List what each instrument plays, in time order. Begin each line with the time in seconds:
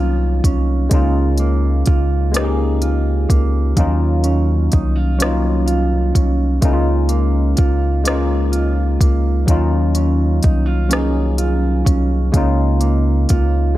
Already playing: analog synth bass C2, clean electric guitar D#3 C#4 F4, tine electric piano F#3 A#3 C#4 D#4 F4
0.44 analog synth bass C2, clean electric guitar C#4, kick, closed hi-hat
0.89 analog synth bass C#2, clean electric guitar C#3 F4, tine electric piano G#3 A#3 C#4 D#4, kick, closed hi-hat
0.94 tine electric piano F4
1.38 clean electric guitar A#3, closed hi-hat
1.86 analog synth bass C#2, clean electric guitar F4, kick, closed hi-hat
2.32 tine electric piano G#3 A#3 C#4, clean electric guitar A#3, closed hi-hat
2.36 tine electric piano D#4 G4, cross-stick
2.44 tine electric piano G#4
2.82 clean electric guitar F4, closed hi-hat
3.29 analog synth bass C#2, clean electric guitar A#3, kick, closed hi-hat
3.75 analog synth bass D#2, clean electric guitar D#3 F4, tine electric piano F3 A#3 C#4 D#4, kick, closed hi-hat
3.81 tine electric piano F#3 F4
4.24 clean electric guitar C#4, closed hi-hat
4.72 analog synth bass C2, clean electric guitar D#4, kick, closed hi-hat
4.96 clean electric guitar F4
5.18 tine electric piano F#3 A#3 C#4, clean electric guitar C#4, cross-stick, closed hi-hat
5.22 tine electric piano D#4 F4
5.66 clean electric guitar F4, closed hi-hat
6.15 analog synth bass C2, clean electric guitar C#4, kick, closed hi-hat
6.61 analog synth bass C#2, clean electric guitar C#3 F4, tine electric piano G#3 A#3 C#4 D#4, kick, closed hi-hat
6.67 tine electric piano E4
6.73 tine electric piano F4
7.09 clean electric guitar A#3, closed hi-hat
7.57 analog synth bass C#2, clean electric guitar F4, kick, closed hi-hat
8.04 tine electric piano G#3 A#3 C#4, clean electric guitar A#3, cross-stick, closed hi-hat
8.08 tine electric piano D#4 F4
8.52 clean electric guitar F4, closed hi-hat
9.00 analog synth bass C#2, clean electric guitar A#3, kick, closed hi-hat
9.46 analog synth bass D#2, clean electric guitar D#3 F4, tine electric piano F#3 A#3 C#4, kick, closed hi-hat
9.50 tine electric piano D#4 F4
9.95 clean electric guitar C#4, closed hi-hat
10.43 analog synth bass C2, clean electric guitar D#4, kick, closed hi-hat
10.66 clean electric guitar F4
10.88 tine electric piano F#3 A#3 C#4, clean electric guitar C#4, closed hi-hat
10.92 tine electric piano D#4 G#4, cross-stick
11.38 clean electric guitar F4, closed hi-hat
11.85 analog synth bass C2, clean electric guitar C#4, kick, closed hi-hat
12.32 analog synth bass C#2, clean electric guitar C#3 F4, tine electric piano G#3 A#3 C#4, kick, closed hi-hat
12.36 tine electric piano D#4 F4
12.80 clean electric guitar A#3, closed hi-hat
13.29 analog synth bass C#2, clean electric guitar F4, kick, closed hi-hat